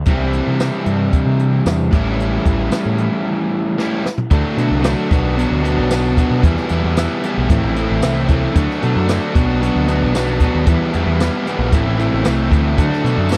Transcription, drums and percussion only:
0.05 kick, closed hi-hat
0.33 closed hi-hat
0.60 snare, closed hi-hat, tambourine
0.86 closed hi-hat
1.13 kick, closed hi-hat
1.39 closed hi-hat
1.66 snare, closed hi-hat, tambourine
1.93 kick, closed hi-hat
2.20 closed hi-hat
2.46 kick, closed hi-hat
2.72 snare, closed hi-hat, tambourine
2.98 closed hi-hat
3.79 snare
4.06 snare
4.18 floor tom
4.31 kick, closed hi-hat
4.58 closed hi-hat
4.84 snare, closed hi-hat, tambourine
5.11 kick, closed hi-hat
5.39 closed hi-hat
5.65 closed hi-hat
5.91 snare, closed hi-hat, tambourine
6.17 kick, closed hi-hat
6.43 kick, closed hi-hat
6.57 snare
6.69 closed hi-hat
6.97 snare, closed hi-hat, tambourine
7.23 closed hi-hat
7.50 kick, closed hi-hat
7.76 closed hi-hat
8.02 snare, closed hi-hat, tambourine
8.28 kick, closed hi-hat
8.56 kick, closed hi-hat
8.71 snare
8.82 closed hi-hat
9.09 snare, closed hi-hat, tambourine
9.35 kick, closed hi-hat
9.63 closed hi-hat
9.88 closed hi-hat
10.15 snare, closed hi-hat, tambourine
10.40 kick, closed hi-hat
10.66 kick, closed hi-hat
10.93 closed hi-hat
11.20 snare, closed hi-hat, tambourine
11.47 closed hi-hat
11.72 kick, closed hi-hat
11.99 closed hi-hat
12.25 snare, closed hi-hat, tambourine
12.52 kick, closed hi-hat
12.78 kick, closed hi-hat
12.93 snare
13.06 closed hi-hat
13.29 closed hi-hat, tambourine
13.32 snare, tambourine

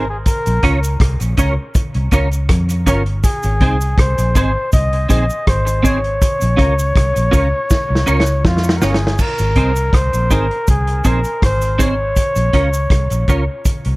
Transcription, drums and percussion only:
0.26 kick, closed hi-hat, cabasa
0.46 closed hi-hat, cabasa
0.63 kick, closed hi-hat
0.83 closed hi-hat, cabasa
1.00 kick, cross-stick, closed hi-hat
1.20 closed hi-hat, cabasa
1.37 kick, closed hi-hat, cabasa
1.75 kick, closed hi-hat, cabasa
1.94 closed hi-hat
2.11 kick, closed hi-hat, cabasa
2.31 closed hi-hat, cabasa
2.49 kick, cross-stick, closed hi-hat
2.69 closed hi-hat, cabasa
2.86 kick, closed hi-hat, cabasa
3.06 closed hi-hat
3.24 kick, closed hi-hat, cabasa
3.43 closed hi-hat, cabasa
3.61 kick, closed hi-hat
3.81 closed hi-hat, cabasa
3.98 kick, cross-stick, closed hi-hat
4.18 closed hi-hat, cabasa
4.35 kick, cross-stick, closed hi-hat, cabasa
4.72 kick, closed hi-hat, cabasa
4.93 closed hi-hat
5.10 kick, closed hi-hat, cabasa
5.30 cabasa
5.47 kick, cross-stick, closed hi-hat
5.67 closed hi-hat, cabasa
5.84 kick, closed hi-hat, cabasa
6.04 closed hi-hat
6.22 kick, closed hi-hat, cabasa
6.41 closed hi-hat, cabasa
6.59 kick, closed hi-hat
6.79 closed hi-hat, cabasa
6.96 kick, cross-stick, closed hi-hat
7.16 closed hi-hat, cabasa
7.33 kick, closed hi-hat, cabasa
7.70 kick, snare, cabasa
7.95 snare
8.07 cabasa
8.20 snare
8.26 cabasa
8.45 kick, snare
8.57 snare
8.64 cabasa
8.69 snare
8.82 snare, cabasa
8.94 snare
9.07 snare
9.19 kick, crash, cabasa
9.38 closed hi-hat, cabasa
9.56 kick, closed hi-hat
9.76 closed hi-hat, cabasa
9.93 kick, cross-stick, closed hi-hat
10.13 closed hi-hat, cabasa
10.30 kick, cross-stick, closed hi-hat, cabasa
10.51 closed hi-hat
10.67 kick, closed hi-hat, cabasa
10.87 closed hi-hat
11.04 kick, closed hi-hat, cabasa
11.24 closed hi-hat, cabasa
11.42 kick, cross-stick, closed hi-hat
11.62 closed hi-hat, cabasa
11.79 kick, closed hi-hat, cabasa
12.16 kick, closed hi-hat, cabasa
12.36 closed hi-hat, cabasa
12.53 kick, closed hi-hat
12.73 closed hi-hat, cabasa
12.90 kick, cross-stick, closed hi-hat
13.10 closed hi-hat, cabasa
13.28 kick, closed hi-hat, cabasa
13.65 kick, closed hi-hat, cabasa
13.85 closed hi-hat

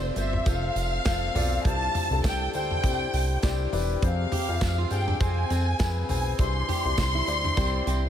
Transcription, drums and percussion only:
0.16 hi-hat pedal, open hi-hat, tambourine
0.33 floor tom
0.46 kick, hi-hat pedal, open hi-hat, tambourine
0.76 hi-hat pedal, open hi-hat, tambourine
1.05 kick, snare, hi-hat pedal, open hi-hat, tambourine
1.35 floor tom, hi-hat pedal, open hi-hat, tambourine
1.65 kick, hi-hat pedal, open hi-hat
1.95 floor tom, hi-hat pedal, open hi-hat, tambourine
2.24 kick, snare, hi-hat pedal, open hi-hat, tambourine
2.54 hi-hat pedal, open hi-hat, tambourine
2.71 floor tom
2.84 kick, hi-hat pedal, open hi-hat, tambourine
3.13 hi-hat pedal, open hi-hat, tambourine
3.43 kick, snare, hi-hat pedal, open hi-hat, tambourine
3.73 floor tom, hi-hat pedal, open hi-hat, tambourine
4.02 kick, hi-hat pedal, open hi-hat, tambourine
4.32 floor tom, hi-hat pedal, open hi-hat
4.61 kick, snare, hi-hat pedal, open hi-hat, tambourine
4.90 hi-hat pedal, open hi-hat, tambourine
5.08 floor tom
5.20 kick, hi-hat pedal, open hi-hat, tambourine
5.50 hi-hat pedal, open hi-hat, tambourine
5.79 kick, snare, hi-hat pedal, open hi-hat, tambourine
6.09 floor tom, hi-hat pedal, open hi-hat, tambourine
6.39 kick, hi-hat pedal, open hi-hat, tambourine
6.69 floor tom, hi-hat pedal, open hi-hat, tambourine
6.97 kick, snare, hi-hat pedal, open hi-hat, tambourine
7.27 hi-hat pedal, open hi-hat, tambourine
7.45 floor tom
7.57 kick, hi-hat pedal, open hi-hat, tambourine
7.87 hi-hat pedal, open hi-hat, tambourine

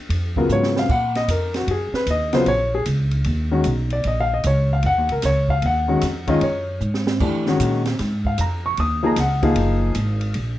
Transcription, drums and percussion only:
0.10 ride
0.36 kick
0.49 hi-hat pedal
0.63 snare
0.76 snare
0.89 kick, crash
1.15 snare, ride
1.28 hi-hat pedal, ride
1.54 snare, ride
1.68 ride
1.94 snare
2.07 hi-hat pedal, ride
2.33 snare, ride
2.46 ride
2.85 hi-hat pedal, ride
3.11 ride
3.24 ride
3.64 hi-hat pedal, ride
3.90 ride
4.04 ride
4.44 hi-hat pedal, ride
4.83 ride
5.09 ride
5.22 snare, hi-hat pedal, ride
5.49 kick
5.62 ride
6.01 snare, hi-hat pedal, ride
6.27 kick, ride
6.41 ride
6.80 hi-hat pedal
6.94 snare
7.07 snare
7.20 kick, crash
7.46 snare
7.60 hi-hat pedal, ride
7.85 snare, ride
7.99 snare, ride
8.25 kick
8.38 hi-hat pedal, ride
8.77 ride
9.16 snare, hi-hat pedal, ride
9.43 kick, ride
9.56 ride
9.95 hi-hat pedal, ride
10.21 ride
10.34 ride

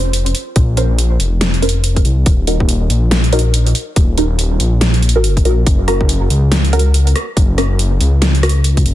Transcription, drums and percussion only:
0.13 closed hi-hat
0.26 closed hi-hat
0.35 closed hi-hat
0.56 kick, closed hi-hat
0.77 closed hi-hat
0.99 closed hi-hat
1.20 closed hi-hat
1.41 snare, closed hi-hat
1.54 closed hi-hat
1.62 closed hi-hat
1.69 closed hi-hat
1.84 closed hi-hat
1.96 kick, closed hi-hat
2.05 closed hi-hat
2.26 kick, closed hi-hat
2.47 closed hi-hat
2.60 kick
2.69 closed hi-hat
2.90 closed hi-hat
3.11 snare, closed hi-hat
3.24 closed hi-hat
3.33 closed hi-hat
3.39 closed hi-hat
3.54 closed hi-hat
3.67 closed hi-hat
3.75 closed hi-hat
3.96 kick, closed hi-hat
4.18 closed hi-hat
4.39 closed hi-hat
4.60 closed hi-hat
4.81 snare, closed hi-hat
4.94 closed hi-hat
5.02 closed hi-hat
5.09 closed hi-hat
5.24 closed hi-hat
5.37 kick, closed hi-hat
5.45 closed hi-hat
5.67 kick, closed hi-hat
5.88 cross-stick, closed hi-hat
6.01 kick
6.09 closed hi-hat
6.30 closed hi-hat
6.52 snare, closed hi-hat
6.65 closed hi-hat
6.73 closed hi-hat
6.79 closed hi-hat
6.94 closed hi-hat
7.07 closed hi-hat
7.16 cross-stick, closed hi-hat
7.37 kick, closed hi-hat
7.58 cross-stick, closed hi-hat
7.79 closed hi-hat
8.01 closed hi-hat
8.22 snare, closed hi-hat
8.35 closed hi-hat
8.43 cross-stick, closed hi-hat
8.49 closed hi-hat
8.64 closed hi-hat
8.77 kick, closed hi-hat
8.86 closed hi-hat

